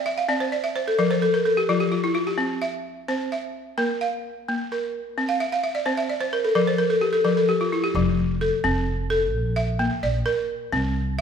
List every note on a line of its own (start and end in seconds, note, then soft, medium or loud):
0.00 0.16 D5 medium
0.06 0.28 E5 medium
0.18 0.39 F5 medium
0.29 0.75 C4 medium
0.29 0.51 D5 medium
0.40 0.62 C5 medium
0.52 0.74 D5 medium
0.64 0.85 E5 medium
0.76 0.97 C5 medium
0.88 1.09 A4 medium
0.99 1.45 F3 medium
0.99 1.20 A#4 medium
1.11 1.32 C5 medium
1.22 1.44 A4 medium
1.34 1.55 A#4 medium
1.45 1.67 A4 medium
1.57 1.79 G4 medium
1.69 2.15 F3 medium
1.69 1.90 F4 medium
1.80 2.02 G4 medium
1.92 2.13 F4 medium
2.04 2.25 E4 medium
2.15 2.36 F4 medium
2.27 2.48 G4 medium
2.38 2.84 C4 medium
2.62 3.31 E5 medium
3.08 3.54 C4 medium
3.08 3.78 C5 medium
3.32 4.01 E5 medium
3.78 4.24 A#3 medium
3.78 4.47 A#4 medium
4.01 4.70 F5 medium
4.49 4.94 A#3 medium
4.72 5.41 A#4 medium
5.18 5.63 C4 medium
5.29 5.50 F5 medium
5.40 5.62 E5 medium
5.52 5.73 F5 medium
5.64 5.85 E5 medium
5.75 5.96 D5 medium
5.86 6.32 C4 medium
5.86 6.07 C5 medium
5.97 6.19 E5 medium
6.10 6.31 D5 medium
6.21 6.42 C5 medium
6.33 6.54 A#4 medium
6.45 6.66 A4 medium
6.55 7.02 F3 medium
6.55 6.77 A#4 medium
6.67 6.89 C5 medium
6.78 7.00 A#4 medium
6.90 7.11 A4 medium
7.01 7.23 G4 medium
7.13 7.35 A4 medium
7.25 7.71 F3 medium
7.25 7.46 A#4 medium
7.37 7.58 A4 medium
7.49 7.70 G4 medium
7.61 7.82 F4 medium
7.72 7.93 E4 medium
7.84 8.05 G4 medium
7.94 8.50 F1 medium
7.94 8.41 F3 medium
8.41 9.09 A4 medium
8.64 9.33 F1 medium
8.64 9.10 C4 medium
9.10 9.33 A4 medium
9.33 9.88 A#1 medium
9.56 10.26 E5 medium
9.79 10.26 A#3 medium
10.03 10.21 A#1 medium
10.03 10.72 D5 medium
10.26 10.72 A#4 medium
10.73 11.21 C2 medium
10.73 11.18 C4 medium